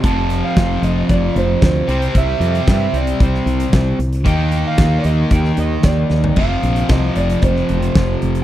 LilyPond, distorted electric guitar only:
\new Staff \with { instrumentName = "Distorted electric guitar" } { \clef bass \time 4/4 \key f \mixolydian \tempo 4 = 114 <f, c f>2.~ <f, c f>8 <c g c'>8~ | <c g c'>2.~ <c g c'>8 r8 | <ees bes ees'>1 | <f, c f>1 | }